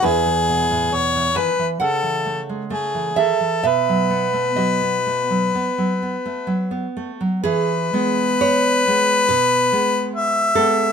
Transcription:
<<
  \new Staff \with { instrumentName = "Harmonica" } { \time 4/4 \key e \major \tempo 4 = 65 gis'4 cis''8 b'8 a'8 r8 gis'8 a'8 | b'2.~ b'8 r8 | b'2. e''4 | }
  \new Staff \with { instrumentName = "Nylon-string guitar" } { \time 4/4 \key e \major << { <e' b'>4. <b' gis''>8 <a' fis''>4. <gis' e''>8 | <b' e''>4 <fis' dis''>2~ <fis' dis''>8 r8 | gis'4 cis''4 b'4. a'8 | } \\ { e,16 e16 b,16 a,16 b,16 e16 dis16 e16 cis16 e16 a16 gis16 a16 e16 dis16 e16 | b,16 fis16 b16 a16 fis16 b16 a16 fis16 b16 fis16 b16 a16 fis16 b16 a16 fis16 | e8 <gis b>4 <gis b>8 b,8 <gis b>4 <gis b>8 | } >> }
>>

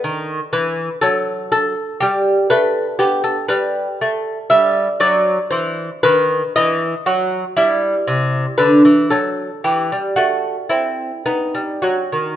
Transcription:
<<
  \new Staff \with { instrumentName = "Lute" } { \time 4/4 \key e \minor \tempo 4 = 59 r8 b'8 a'8 a'8 g'8 b'8 g'16 a'16 b'8 | r8 e''8 d''8 c''8 b'8 dis''8 fis'8 e'8~ | e'8 b'8 a'8 g'8 fis'8 e'8 dis'8 fis'8 | }
  \new Staff \with { instrumentName = "Lute" } { \clef bass \time 4/4 \key e \minor dis8 e8 fis4 g8 a8 b8 g8 | a8 g8 fis8 e8 dis8 e8 fis8 g8 | c8 d16 e16 fis8 e16 g16 a8 c'8 b16 g16 fis16 dis16 | }
>>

